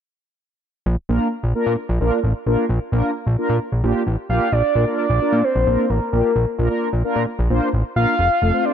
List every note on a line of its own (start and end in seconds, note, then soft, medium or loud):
0.86 0.96 A#1 loud
1.09 1.19 A#1 loud
1.09 1.28 A#3 medium
1.09 1.28 D4 medium
1.09 1.28 F4 medium
1.09 1.28 A#4 medium
1.43 1.53 A#1 loud
1.55 1.74 A#3 medium
1.55 1.73 D4 medium
1.55 1.74 F4 medium
1.55 1.74 A#4 medium
1.66 1.76 A#2 medium
1.89 1.99 A#1 loud
2.01 2.11 A#1 medium
2.01 2.19 A#3 medium
2.01 2.19 D4 medium
2.01 2.19 F4 medium
2.01 2.19 A#4 medium
2.24 2.34 A1 medium
2.46 2.57 A#1 medium
2.46 2.65 A#3 medium
2.46 2.65 D4 medium
2.46 2.65 F4 medium
2.46 2.65 A#4 medium
2.69 2.79 A#1 loud
2.92 3.02 A#1 loud
2.92 3.11 A#3 medium
2.92 3.11 D4 medium
2.92 3.11 F4 medium
2.92 3.11 A#4 medium
3.27 3.37 A#1 loud
3.38 3.57 A#3 medium
3.38 3.57 D4 medium
3.38 3.57 F4 medium
3.38 3.57 A#4 loud
3.49 3.60 A#2 medium
3.72 3.82 A#1 medium
3.84 3.94 A#1 medium
3.84 4.02 A#3 medium
3.84 4.02 D4 medium
3.84 4.02 F4 medium
3.84 4.02 G4 medium
4.07 4.17 A1 loud
4.30 4.40 A#1 medium
4.30 4.48 A#3 medium
4.30 4.48 D4 medium
4.30 4.48 F4 medium
4.30 4.48 G4 medium
4.30 4.54 F5 loud
4.52 4.63 A#1 loud
4.52 4.98 D5 loud
4.75 4.85 A#1 loud
4.75 4.85 A#3 medium
4.75 4.85 D4 medium
4.75 4.85 F4 medium
4.75 4.85 A#4 medium
4.87 5.06 A#3 medium
4.87 5.06 D4 medium
4.87 5.06 F4 medium
4.87 5.06 A#4 medium
4.98 5.46 D5 loud
5.10 5.20 A#1 loud
5.21 5.40 A#3 medium
5.21 5.40 D4 medium
5.21 5.40 F4 medium
5.21 5.40 A#4 medium
5.33 5.43 A#2 medium
5.44 5.91 C5 medium
5.56 5.66 A#1 loud
5.67 5.77 A#1 loud
5.67 5.86 A#3 medium
5.67 5.86 D4 medium
5.67 5.86 F4 medium
5.67 5.86 A#4 medium
5.90 6.00 A1 medium
5.90 6.12 A#4 medium
6.13 6.23 A#1 medium
6.13 6.31 A#3 medium
6.13 6.31 D4 medium
6.13 6.31 F4 medium
6.13 6.31 G4 medium
6.13 6.55 A#4 medium
6.36 6.46 A#1 loud
6.58 6.69 A#1 loud
6.58 6.68 A#3 medium
6.58 6.68 D4 medium
6.58 6.68 F4 medium
6.58 6.68 A#4 medium
6.70 6.89 A#3 medium
6.70 6.89 D4 medium
6.70 6.89 F4 medium
6.70 6.89 A#4 medium
6.93 7.03 A#1 loud
7.04 7.23 A#3 medium
7.04 7.23 D4 medium
7.04 7.23 F4 medium
7.04 7.23 A#4 loud
7.16 7.26 A#2 medium
7.39 7.49 A#1 loud
7.50 7.60 A#1 medium
7.50 7.69 A#3 medium
7.50 7.69 D4 medium
7.50 7.69 F4 medium
7.50 7.69 C5 loud
7.73 7.83 A1 loud
7.96 8.06 A#1 loud
7.96 8.15 A#3 medium
7.96 8.15 D4 medium
7.96 8.15 F4 medium
7.96 8.15 A#4 medium
7.96 8.67 F5 loud
8.19 8.29 F1 loud
8.42 8.52 F1 loud
8.42 8.51 A3 medium
8.42 8.51 C4 medium
8.42 8.51 F4 medium
8.42 8.51 A4 medium
8.53 8.72 A3 medium
8.53 8.72 C4 medium
8.53 8.72 F4 medium
8.53 8.72 C5 medium
8.65 8.73 D5 loud